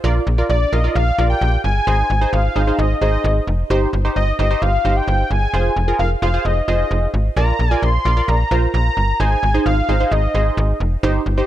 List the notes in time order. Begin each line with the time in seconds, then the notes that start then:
0.04 A#1 F4 A#4 D5
0.27 A#1
0.38 F4 A#4 D5
0.50 A#1 D5
0.72 A#1 F4 A#4 D#5 F5
0.84 F4 A#4 D5
0.95 A#1 F5
1.18 A#1 F4 A#4 D5
1.30 G5
1.41 A#1
1.64 G1 G#5
1.87 G#1 D#4 G#4 C5
2.10 G#1
2.21 D#4 G#4 C5
2.33 G#1 F5
2.56 G#1 D#4 G#4 C5
2.67 D#4 G#4 C5
2.79 G#1 D#5
3.01 G#1 D#4 G#4 C5 D#5
3.24 G#1
3.47 F1
3.70 G1 D#4 G4 C5
3.93 G1
4.05 D#4 G4 C5
4.16 G1 D#5
4.39 G1 D#4 G4 C5 D#5
4.51 D#4 G4 C5
4.62 G1 F5
4.85 G1 D#4 G4 C5
4.96 G5
5.08 G1
5.31 G1 G#5
5.53 F1 F4 G#4 C5
5.76 F1
5.88 F4 G#4 A#4
5.99 F1 F5
6.22 F1 F4 G#4 C5 F5
6.34 F4 G#4 C5
6.45 F1 D#5
6.68 F1 F4 G#4 C5 D#5
6.91 F1
7.14 G#1
7.36 A#1 F4 A#4 D5 A#5
7.59 A#1
7.71 F4 A#4 D5 G#5
7.82 A#1 C6
8.05 A#1 F4 A#4 D5
8.17 F4 A#4 D5
8.28 A#1 A#5
8.51 A#1 F4 A#4 C5
8.74 A#1 A#5
8.97 G1
9.20 G#1 D#4 G#4 C5 G#5
9.43 G#1
9.54 D#4 G#4 C5
9.66 G#1 F5
9.89 G#1 D#4 G#4 C5
10.00 D#4 G#4 C5
10.12 G#1 D#5
10.35 G#1 D#4 G#4 C5
10.57 G#1
10.80 F1
11.03 G1 D#4 G4 C5
11.26 G1
11.38 D#4 G4 C5